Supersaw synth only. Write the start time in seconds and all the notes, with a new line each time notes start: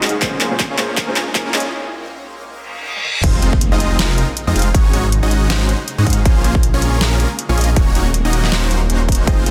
0.03 G#3 C#4 D#4 F#4 F5
0.22 A#3 C#4 F4 G#4 C5
0.41 A#3 C#4 F4 G#4 C5
0.70 A#3 C#4 F4 G#4 C#5
0.97 A#3 C#4 F4 G#4 A#4
1.45 A#3 C#4 F4 G#4 C#5
1.54 A#3 C#4 F4 G#4 D#5
3.24 G#3 C4 D#4 F4 C5
3.42 G#3 C4 D#4 F4 C5
3.72 G#3 C4 D#4 F4 D#5
3.99 G#3 C4 D#4 F4 A#4
4.47 G#3 C4 D#4 F4 D#5
4.56 G#3 C4 D#4 F4 F5
4.74 G#3 C#4 D#4 F#4 C#5
4.93 G#3 C#4 D#4 F#4 C#5
5.23 G#3 C#4 D#4 F#4 D#5
5.50 G#3 C#4 D#4 F#4 C5
5.98 G#3 C#4 D#4 F#4 D#5
6.07 G#3 C#4 D#4 F#4 F5
6.25 A#3 C#4 F4 G#4 C5
6.44 A#3 C#4 F4 G#4 C5
6.74 A#3 C#4 F4 G#4 C#5
7.01 A#3 C#4 F4 G#4 A#4
7.49 A#3 C#4 F4 G#4 C#5
7.57 A#3 C#4 F4 G#4 D#5
7.76 A#3 C#4 D#4 F#4 C#5
7.95 A#3 C#4 D#4 F#4 C#5
8.25 A#3 C#4 D#4 F#4 D#5
8.52 A#3 C#4 D#4 F#4 C5
8.90 A#3 C#4 D#4 F#4 C5
9.27 G#3 C4 D#4 F4 C5
9.46 G#3 C4 D#4 F4 C5